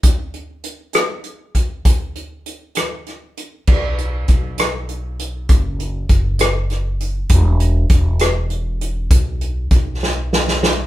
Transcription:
<<
  \new Staff \with { instrumentName = "Upright bass" } { \clef bass \time 6/8 \key b \mixolydian \tempo 4. = 66 r2. | r2. | b,,4 b,,2 | fis,,4 fis,,2 |
e,,4 e,,2 | b,,4 b,,2 | }
  \new DrumStaff \with { instrumentName = "Drums" } \drummode { \time 6/8 <hh bd>8 hh8 hh8 <hh ss>8 hh8 <hh bd>8 | <hh bd>8 hh8 hh8 <hh ss>8 <hh ss>8 hh8 | <cymc bd>8 hh8 <hh bd>8 <hh ss>8 hh8 hh8 | <hh bd>8 hh8 <hh bd>8 <hh ss>8 <hh ss>8 hh8 |
<hh bd>8 hh8 <hh bd>8 <hh ss>8 hh8 hh8 | <hh bd>8 hh8 <hh bd>8 sn8 sn16 sn16 sn8 | }
>>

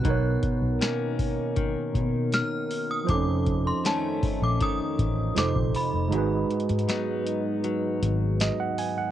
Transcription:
<<
  \new Staff \with { instrumentName = "Synth bell" } { \time 4/4 \key gis \dorian \tempo 4 = 79 fis'''8 r2 r8 eis'''8. dis'''16 | d'''8. c'''16 a''8. d'''16 ees'''4 d'''8 b''8~ | b''8 r2. r8 | }
  \new Staff \with { instrumentName = "Tine electric piano" } { \time 4/4 \key gis \dorian <b, b dis' ais' cis''>1 | <f des' ees' a' c''>2. <c f ees' a' c''>4 | <gis dis' fis' gis' b'>2. dis''16 fis''16 gis''16 fis''16 | }
  \new Staff \with { instrumentName = "French horn section" } { \time 4/4 \key gis \dorian <b, dis' ais'>1 | <f a ees'>1 | <gis fis' b'>1 | }
  \new Staff \with { instrumentName = "Clean electric guitar" } { \clef bass \time 4/4 \key gis \dorian b,4 <dis ais cis'>4 dis2 | f,4 <ees a des'>4 ees4 f,4 | gis,4 <fis b dis'>4 fis2 | }
  \new Staff \with { instrumentName = "Fingered electric bass" } { \clef bass \time 4/4 \key gis \dorian b,,8 r16 b,,16 r4. b,8. r8. | f,,4 r8. ais,,16 r8 a,,8 f,,16 ais,,16 r16 f,,16 | gis,,8 r16 gis,16 r4. gis,,8. r8. | }
  \new DrumStaff \with { instrumentName = "Drums" } \drummode { \time 4/4 <hh bd>8 <hh bd>8 <hh sn>8 <hho bd>8 <hh bd>8 <hh bd>8 <hh sn>8 hho8 | <hh bd>8 <hh bd>8 <hh sn>8 <hho bd>8 <hh bd>8 <hh bd>8 <hh sn>16 bd16 hho8 | hh8 hh32 hh32 hh32 hh32 <hh sn>8 hh8 hh8 hh8 <hh sn>8 hho8 | }
>>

